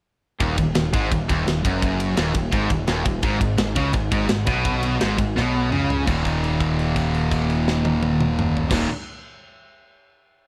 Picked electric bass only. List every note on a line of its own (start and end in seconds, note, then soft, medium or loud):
0.41 0.57 D#1 medium
0.58 0.75 D#1 medium
0.76 0.93 D#1 medium
0.94 1.10 G#1 loud
1.12 1.28 D#1 medium
1.30 1.46 D#1 loud
1.47 1.63 D#1 medium
1.65 2.14 F#1 loud
2.17 2.34 D#1 medium
2.36 2.52 D#1 medium
2.53 2.69 G#1 loud
2.70 2.87 D#1 medium
2.88 3.04 D#1 medium
3.06 3.22 D#1 medium
3.23 3.40 G#1 medium
3.42 3.58 G#1 medium
3.58 3.75 G#1 medium
3.77 3.93 C#2 medium
3.95 4.11 G#1 loud
4.12 4.28 G#1 loud
4.30 4.46 G#1 medium
4.48 4.97 B1 loud
5.02 5.18 G#1 medium
5.19 5.35 G#1 medium
5.38 5.70 B1 loud
5.73 6.06 C#2 medium
6.08 8.63 D#1 medium
8.71 8.86 D#1 loud